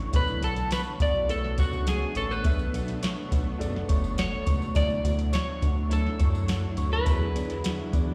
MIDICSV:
0, 0, Header, 1, 7, 480
1, 0, Start_track
1, 0, Tempo, 577478
1, 113, Time_signature, 4, 2, 24, 8
1, 6768, End_track
2, 0, Start_track
2, 0, Title_t, "Clean electric guitar"
2, 0, Program_c, 0, 27
2, 132, Note_on_c, 0, 71, 99
2, 363, Note_off_c, 0, 71, 0
2, 366, Note_on_c, 0, 69, 95
2, 601, Note_off_c, 0, 69, 0
2, 605, Note_on_c, 0, 71, 90
2, 668, Note_off_c, 0, 71, 0
2, 848, Note_on_c, 0, 74, 99
2, 1083, Note_on_c, 0, 69, 101
2, 1088, Note_off_c, 0, 74, 0
2, 1322, Note_off_c, 0, 69, 0
2, 1325, Note_on_c, 0, 66, 89
2, 1565, Note_off_c, 0, 66, 0
2, 1568, Note_on_c, 0, 68, 87
2, 1801, Note_off_c, 0, 68, 0
2, 1804, Note_on_c, 0, 69, 94
2, 1922, Note_off_c, 0, 69, 0
2, 1922, Note_on_c, 0, 71, 86
2, 2878, Note_off_c, 0, 71, 0
2, 3482, Note_on_c, 0, 73, 98
2, 3954, Note_off_c, 0, 73, 0
2, 3958, Note_on_c, 0, 74, 111
2, 4402, Note_off_c, 0, 74, 0
2, 4436, Note_on_c, 0, 73, 92
2, 4926, Note_on_c, 0, 69, 83
2, 4929, Note_off_c, 0, 73, 0
2, 5486, Note_off_c, 0, 69, 0
2, 5758, Note_on_c, 0, 71, 106
2, 6681, Note_off_c, 0, 71, 0
2, 6768, End_track
3, 0, Start_track
3, 0, Title_t, "Clean electric guitar"
3, 0, Program_c, 1, 27
3, 0, Note_on_c, 1, 50, 84
3, 0, Note_on_c, 1, 57, 64
3, 0, Note_on_c, 1, 66, 51
3, 0, Note_on_c, 1, 73, 65
3, 117, Note_off_c, 1, 50, 0
3, 120, Note_on_c, 1, 47, 80
3, 163, Note_off_c, 1, 66, 0
3, 358, Note_on_c, 1, 66, 61
3, 594, Note_off_c, 1, 73, 0
3, 598, Note_on_c, 1, 73, 64
3, 828, Note_off_c, 1, 66, 0
3, 832, Note_on_c, 1, 66, 66
3, 1071, Note_off_c, 1, 57, 0
3, 1074, Note_on_c, 1, 57, 71
3, 1312, Note_off_c, 1, 73, 0
3, 1315, Note_on_c, 1, 73, 65
3, 1556, Note_off_c, 1, 66, 0
3, 1559, Note_on_c, 1, 66, 60
3, 1792, Note_off_c, 1, 73, 0
3, 1795, Note_on_c, 1, 73, 67
3, 2025, Note_off_c, 1, 47, 0
3, 2035, Note_on_c, 1, 47, 87
3, 2273, Note_off_c, 1, 66, 0
3, 2277, Note_on_c, 1, 66, 59
3, 2512, Note_off_c, 1, 73, 0
3, 2515, Note_on_c, 1, 73, 66
3, 2746, Note_off_c, 1, 66, 0
3, 2750, Note_on_c, 1, 66, 61
3, 2993, Note_off_c, 1, 57, 0
3, 2996, Note_on_c, 1, 57, 72
3, 3226, Note_off_c, 1, 73, 0
3, 3229, Note_on_c, 1, 73, 67
3, 3469, Note_off_c, 1, 66, 0
3, 3473, Note_on_c, 1, 66, 65
3, 3701, Note_off_c, 1, 73, 0
3, 3705, Note_on_c, 1, 73, 72
3, 3944, Note_off_c, 1, 47, 0
3, 3948, Note_on_c, 1, 50, 83
3, 4186, Note_off_c, 1, 66, 0
3, 4190, Note_on_c, 1, 66, 64
3, 4424, Note_off_c, 1, 73, 0
3, 4427, Note_on_c, 1, 73, 70
3, 4664, Note_off_c, 1, 66, 0
3, 4667, Note_on_c, 1, 66, 58
3, 4906, Note_off_c, 1, 57, 0
3, 4909, Note_on_c, 1, 57, 72
3, 5139, Note_off_c, 1, 73, 0
3, 5149, Note_on_c, 1, 73, 66
3, 5387, Note_off_c, 1, 66, 0
3, 5391, Note_on_c, 1, 66, 61
3, 5625, Note_off_c, 1, 73, 0
3, 5635, Note_on_c, 1, 73, 72
3, 5869, Note_on_c, 1, 52, 78
3, 5894, Note_off_c, 1, 50, 0
3, 5918, Note_off_c, 1, 57, 0
3, 5921, Note_off_c, 1, 73, 0
3, 6114, Note_on_c, 1, 62, 64
3, 6347, Note_off_c, 1, 66, 0
3, 6350, Note_on_c, 1, 66, 64
3, 6585, Note_off_c, 1, 62, 0
3, 6588, Note_on_c, 1, 62, 63
3, 6768, Note_off_c, 1, 52, 0
3, 6768, Note_off_c, 1, 62, 0
3, 6768, Note_off_c, 1, 66, 0
3, 6768, End_track
4, 0, Start_track
4, 0, Title_t, "Upright piano"
4, 0, Program_c, 2, 0
4, 0, Control_c, 2, 64, 127
4, 0, Note_on_c, 2, 54, 84
4, 0, Note_on_c, 2, 62, 84
4, 0, Note_on_c, 2, 64, 81
4, 0, Note_on_c, 2, 66, 99
4, 100, Note_on_c, 2, 59, 68
4, 108, Note_off_c, 2, 62, 0
4, 108, Note_on_c, 2, 62, 68
4, 112, Note_on_c, 2, 69, 66
4, 120, Note_on_c, 2, 73, 78
4, 122, Control_c, 2, 64, 0
4, 123, Note_off_c, 2, 54, 0
4, 126, Note_off_c, 2, 66, 0
4, 130, Note_off_c, 2, 64, 0
4, 245, Control_c, 2, 64, 127
4, 683, Note_off_c, 2, 59, 0
4, 687, Note_off_c, 2, 62, 0
4, 689, Note_off_c, 2, 69, 0
4, 693, Note_off_c, 2, 73, 0
4, 1061, Note_on_c, 2, 59, 77
4, 1069, Note_on_c, 2, 62, 66
4, 1076, Note_on_c, 2, 69, 71
4, 1083, Note_on_c, 2, 73, 81
4, 1644, Note_off_c, 2, 59, 0
4, 1648, Note_off_c, 2, 62, 0
4, 1651, Note_off_c, 2, 69, 0
4, 1655, Note_off_c, 2, 73, 0
4, 2017, Note_on_c, 2, 59, 70
4, 2026, Note_on_c, 2, 62, 67
4, 2033, Note_on_c, 2, 69, 61
4, 2038, Note_on_c, 2, 76, 81
4, 2601, Note_off_c, 2, 59, 0
4, 2606, Note_off_c, 2, 62, 0
4, 2610, Note_off_c, 2, 69, 0
4, 2612, Note_off_c, 2, 76, 0
4, 2978, Note_on_c, 2, 59, 91
4, 2985, Note_on_c, 2, 62, 81
4, 2992, Note_on_c, 2, 69, 84
4, 2997, Note_on_c, 2, 74, 98
4, 3562, Note_off_c, 2, 59, 0
4, 3565, Note_off_c, 2, 62, 0
4, 3569, Note_off_c, 2, 69, 0
4, 3571, Note_off_c, 2, 74, 0
4, 3942, Note_on_c, 2, 54, 74
4, 3948, Note_on_c, 2, 62, 71
4, 3954, Note_on_c, 2, 64, 69
4, 3963, Note_on_c, 2, 74, 79
4, 3965, Control_c, 2, 64, 0
4, 4114, Control_c, 2, 64, 127
4, 4523, Note_off_c, 2, 54, 0
4, 4527, Note_off_c, 2, 62, 0
4, 4530, Note_off_c, 2, 64, 0
4, 4534, Note_off_c, 2, 74, 0
4, 4898, Note_on_c, 2, 54, 72
4, 4903, Note_on_c, 2, 62, 70
4, 4910, Note_on_c, 2, 64, 67
4, 4919, Note_on_c, 2, 73, 80
4, 5481, Note_off_c, 2, 54, 0
4, 5484, Note_off_c, 2, 62, 0
4, 5487, Note_off_c, 2, 64, 0
4, 5491, Note_off_c, 2, 73, 0
4, 5854, Note_on_c, 2, 54, 76
4, 5860, Note_on_c, 2, 62, 65
4, 5868, Note_on_c, 2, 64, 64
4, 5874, Note_on_c, 2, 66, 62
4, 5882, Control_c, 2, 64, 0
4, 5927, Note_off_c, 2, 66, 0
4, 5927, Note_on_c, 2, 68, 81
4, 6003, Control_c, 2, 64, 127
4, 6439, Note_off_c, 2, 54, 0
4, 6442, Note_off_c, 2, 62, 0
4, 6445, Note_off_c, 2, 64, 0
4, 6475, Note_off_c, 2, 68, 0
4, 6768, End_track
5, 0, Start_track
5, 0, Title_t, "Ambient pad"
5, 0, Program_c, 3, 92
5, 112, Note_on_c, 3, 47, 81
5, 112, Note_on_c, 3, 57, 77
5, 112, Note_on_c, 3, 59, 77
5, 113, Note_on_c, 3, 62, 93
5, 3920, Note_off_c, 3, 47, 0
5, 3920, Note_off_c, 3, 57, 0
5, 3920, Note_off_c, 3, 59, 0
5, 3920, Note_off_c, 3, 62, 0
5, 3954, Note_on_c, 3, 64, 100
5, 3955, Note_on_c, 3, 62, 76
5, 3958, Note_on_c, 3, 54, 78
5, 3959, Note_on_c, 3, 50, 90
5, 5854, Note_off_c, 3, 62, 0
5, 5873, Note_on_c, 3, 56, 75
5, 6768, Note_off_c, 3, 50, 0
5, 6768, Note_off_c, 3, 54, 0
5, 6768, Note_off_c, 3, 56, 0
5, 6768, Note_off_c, 3, 64, 0
5, 6768, End_track
6, 0, Start_track
6, 0, Title_t, "Analog synth bass"
6, 0, Program_c, 4, 38
6, 111, Note_on_c, 4, 35, 107
6, 304, Note_off_c, 4, 35, 0
6, 348, Note_on_c, 4, 35, 95
6, 638, Note_off_c, 4, 35, 0
6, 831, Note_on_c, 4, 35, 106
6, 1315, Note_on_c, 4, 37, 91
6, 1327, Note_off_c, 4, 35, 0
6, 1698, Note_off_c, 4, 37, 0
6, 1790, Note_on_c, 4, 33, 86
6, 2034, Note_on_c, 4, 35, 117
6, 2047, Note_off_c, 4, 33, 0
6, 2226, Note_off_c, 4, 35, 0
6, 2274, Note_on_c, 4, 35, 108
6, 2562, Note_off_c, 4, 35, 0
6, 2757, Note_on_c, 4, 35, 121
6, 2948, Note_off_c, 4, 35, 0
6, 2997, Note_on_c, 4, 30, 94
6, 3188, Note_off_c, 4, 30, 0
6, 3239, Note_on_c, 4, 30, 89
6, 3621, Note_off_c, 4, 30, 0
6, 3715, Note_on_c, 4, 37, 90
6, 3906, Note_off_c, 4, 37, 0
6, 3955, Note_on_c, 4, 38, 109
6, 4146, Note_off_c, 4, 38, 0
6, 4192, Note_on_c, 4, 38, 106
6, 4481, Note_off_c, 4, 38, 0
6, 4673, Note_on_c, 4, 38, 106
6, 5057, Note_off_c, 4, 38, 0
6, 5157, Note_on_c, 4, 42, 84
6, 5539, Note_off_c, 4, 42, 0
6, 5632, Note_on_c, 4, 38, 89
6, 5824, Note_off_c, 4, 38, 0
6, 5869, Note_on_c, 4, 40, 103
6, 6062, Note_off_c, 4, 40, 0
6, 6110, Note_on_c, 4, 40, 93
6, 6398, Note_off_c, 4, 40, 0
6, 6592, Note_on_c, 4, 40, 115
6, 6768, Note_off_c, 4, 40, 0
6, 6768, End_track
7, 0, Start_track
7, 0, Title_t, "Drums"
7, 106, Note_on_c, 9, 54, 49
7, 112, Note_on_c, 9, 36, 105
7, 112, Note_on_c, 9, 42, 87
7, 189, Note_off_c, 9, 54, 0
7, 195, Note_off_c, 9, 42, 0
7, 196, Note_off_c, 9, 36, 0
7, 227, Note_on_c, 9, 54, 30
7, 311, Note_off_c, 9, 54, 0
7, 353, Note_on_c, 9, 42, 81
7, 358, Note_on_c, 9, 54, 44
7, 436, Note_off_c, 9, 42, 0
7, 441, Note_off_c, 9, 54, 0
7, 469, Note_on_c, 9, 42, 54
7, 476, Note_on_c, 9, 54, 29
7, 552, Note_off_c, 9, 42, 0
7, 559, Note_off_c, 9, 54, 0
7, 587, Note_on_c, 9, 42, 90
7, 597, Note_on_c, 9, 54, 82
7, 600, Note_on_c, 9, 38, 115
7, 670, Note_off_c, 9, 42, 0
7, 680, Note_off_c, 9, 54, 0
7, 683, Note_off_c, 9, 38, 0
7, 832, Note_on_c, 9, 36, 95
7, 832, Note_on_c, 9, 42, 64
7, 837, Note_on_c, 9, 54, 43
7, 915, Note_off_c, 9, 36, 0
7, 915, Note_off_c, 9, 42, 0
7, 920, Note_off_c, 9, 54, 0
7, 1075, Note_on_c, 9, 42, 81
7, 1082, Note_on_c, 9, 54, 46
7, 1158, Note_off_c, 9, 42, 0
7, 1165, Note_off_c, 9, 54, 0
7, 1202, Note_on_c, 9, 38, 36
7, 1285, Note_off_c, 9, 38, 0
7, 1311, Note_on_c, 9, 42, 70
7, 1314, Note_on_c, 9, 54, 48
7, 1317, Note_on_c, 9, 36, 104
7, 1394, Note_off_c, 9, 42, 0
7, 1398, Note_off_c, 9, 54, 0
7, 1400, Note_off_c, 9, 36, 0
7, 1437, Note_on_c, 9, 54, 35
7, 1520, Note_off_c, 9, 54, 0
7, 1552, Note_on_c, 9, 42, 81
7, 1554, Note_on_c, 9, 54, 75
7, 1560, Note_on_c, 9, 38, 100
7, 1635, Note_off_c, 9, 42, 0
7, 1637, Note_off_c, 9, 54, 0
7, 1643, Note_off_c, 9, 38, 0
7, 1788, Note_on_c, 9, 42, 69
7, 1793, Note_on_c, 9, 54, 43
7, 1871, Note_off_c, 9, 42, 0
7, 1876, Note_off_c, 9, 54, 0
7, 1924, Note_on_c, 9, 54, 29
7, 2007, Note_off_c, 9, 54, 0
7, 2029, Note_on_c, 9, 54, 51
7, 2033, Note_on_c, 9, 42, 86
7, 2034, Note_on_c, 9, 36, 118
7, 2112, Note_off_c, 9, 54, 0
7, 2116, Note_off_c, 9, 42, 0
7, 2117, Note_off_c, 9, 36, 0
7, 2154, Note_on_c, 9, 54, 31
7, 2238, Note_off_c, 9, 54, 0
7, 2279, Note_on_c, 9, 42, 76
7, 2284, Note_on_c, 9, 54, 43
7, 2362, Note_off_c, 9, 42, 0
7, 2368, Note_off_c, 9, 54, 0
7, 2395, Note_on_c, 9, 42, 52
7, 2398, Note_on_c, 9, 54, 31
7, 2478, Note_off_c, 9, 42, 0
7, 2481, Note_off_c, 9, 54, 0
7, 2516, Note_on_c, 9, 42, 97
7, 2518, Note_on_c, 9, 54, 81
7, 2529, Note_on_c, 9, 38, 118
7, 2599, Note_off_c, 9, 42, 0
7, 2601, Note_off_c, 9, 54, 0
7, 2612, Note_off_c, 9, 38, 0
7, 2757, Note_on_c, 9, 36, 88
7, 2760, Note_on_c, 9, 42, 68
7, 2761, Note_on_c, 9, 54, 40
7, 2840, Note_off_c, 9, 36, 0
7, 2843, Note_off_c, 9, 42, 0
7, 2844, Note_off_c, 9, 54, 0
7, 3001, Note_on_c, 9, 42, 79
7, 3008, Note_on_c, 9, 54, 44
7, 3085, Note_off_c, 9, 42, 0
7, 3091, Note_off_c, 9, 54, 0
7, 3129, Note_on_c, 9, 38, 34
7, 3212, Note_off_c, 9, 38, 0
7, 3234, Note_on_c, 9, 42, 72
7, 3236, Note_on_c, 9, 54, 47
7, 3239, Note_on_c, 9, 36, 106
7, 3317, Note_off_c, 9, 42, 0
7, 3319, Note_off_c, 9, 54, 0
7, 3322, Note_off_c, 9, 36, 0
7, 3357, Note_on_c, 9, 54, 34
7, 3440, Note_off_c, 9, 54, 0
7, 3474, Note_on_c, 9, 42, 85
7, 3474, Note_on_c, 9, 54, 79
7, 3482, Note_on_c, 9, 38, 108
7, 3557, Note_off_c, 9, 42, 0
7, 3558, Note_off_c, 9, 54, 0
7, 3565, Note_off_c, 9, 38, 0
7, 3710, Note_on_c, 9, 54, 46
7, 3714, Note_on_c, 9, 42, 69
7, 3716, Note_on_c, 9, 36, 93
7, 3793, Note_off_c, 9, 54, 0
7, 3797, Note_off_c, 9, 42, 0
7, 3799, Note_off_c, 9, 36, 0
7, 3838, Note_on_c, 9, 54, 28
7, 3922, Note_off_c, 9, 54, 0
7, 3948, Note_on_c, 9, 54, 52
7, 3955, Note_on_c, 9, 36, 116
7, 3956, Note_on_c, 9, 42, 93
7, 4031, Note_off_c, 9, 54, 0
7, 4038, Note_off_c, 9, 36, 0
7, 4039, Note_off_c, 9, 42, 0
7, 4074, Note_on_c, 9, 54, 30
7, 4157, Note_off_c, 9, 54, 0
7, 4196, Note_on_c, 9, 42, 77
7, 4201, Note_on_c, 9, 54, 46
7, 4280, Note_off_c, 9, 42, 0
7, 4284, Note_off_c, 9, 54, 0
7, 4312, Note_on_c, 9, 42, 56
7, 4315, Note_on_c, 9, 54, 30
7, 4395, Note_off_c, 9, 42, 0
7, 4398, Note_off_c, 9, 54, 0
7, 4429, Note_on_c, 9, 54, 84
7, 4434, Note_on_c, 9, 42, 96
7, 4447, Note_on_c, 9, 38, 116
7, 4512, Note_off_c, 9, 54, 0
7, 4517, Note_off_c, 9, 42, 0
7, 4530, Note_off_c, 9, 38, 0
7, 4671, Note_on_c, 9, 54, 42
7, 4674, Note_on_c, 9, 36, 94
7, 4675, Note_on_c, 9, 42, 68
7, 4754, Note_off_c, 9, 54, 0
7, 4757, Note_off_c, 9, 36, 0
7, 4758, Note_off_c, 9, 42, 0
7, 4913, Note_on_c, 9, 42, 81
7, 4922, Note_on_c, 9, 54, 46
7, 4997, Note_off_c, 9, 42, 0
7, 5005, Note_off_c, 9, 54, 0
7, 5042, Note_on_c, 9, 38, 35
7, 5125, Note_off_c, 9, 38, 0
7, 5149, Note_on_c, 9, 42, 69
7, 5152, Note_on_c, 9, 54, 47
7, 5156, Note_on_c, 9, 36, 103
7, 5232, Note_off_c, 9, 42, 0
7, 5235, Note_off_c, 9, 54, 0
7, 5239, Note_off_c, 9, 36, 0
7, 5276, Note_on_c, 9, 54, 33
7, 5359, Note_off_c, 9, 54, 0
7, 5389, Note_on_c, 9, 42, 89
7, 5394, Note_on_c, 9, 54, 75
7, 5397, Note_on_c, 9, 38, 96
7, 5472, Note_off_c, 9, 42, 0
7, 5477, Note_off_c, 9, 54, 0
7, 5480, Note_off_c, 9, 38, 0
7, 5627, Note_on_c, 9, 42, 63
7, 5633, Note_on_c, 9, 54, 48
7, 5710, Note_off_c, 9, 42, 0
7, 5716, Note_off_c, 9, 54, 0
7, 5759, Note_on_c, 9, 54, 28
7, 5842, Note_off_c, 9, 54, 0
7, 5868, Note_on_c, 9, 54, 51
7, 5871, Note_on_c, 9, 42, 90
7, 5872, Note_on_c, 9, 36, 110
7, 5951, Note_off_c, 9, 54, 0
7, 5954, Note_off_c, 9, 42, 0
7, 5955, Note_off_c, 9, 36, 0
7, 6116, Note_on_c, 9, 42, 84
7, 6121, Note_on_c, 9, 54, 47
7, 6199, Note_off_c, 9, 42, 0
7, 6204, Note_off_c, 9, 54, 0
7, 6233, Note_on_c, 9, 42, 58
7, 6235, Note_on_c, 9, 54, 30
7, 6316, Note_off_c, 9, 42, 0
7, 6319, Note_off_c, 9, 54, 0
7, 6352, Note_on_c, 9, 42, 101
7, 6354, Note_on_c, 9, 54, 88
7, 6365, Note_on_c, 9, 38, 117
7, 6436, Note_off_c, 9, 42, 0
7, 6437, Note_off_c, 9, 54, 0
7, 6449, Note_off_c, 9, 38, 0
7, 6593, Note_on_c, 9, 36, 96
7, 6593, Note_on_c, 9, 54, 40
7, 6594, Note_on_c, 9, 42, 67
7, 6676, Note_off_c, 9, 36, 0
7, 6676, Note_off_c, 9, 54, 0
7, 6678, Note_off_c, 9, 42, 0
7, 6768, End_track
0, 0, End_of_file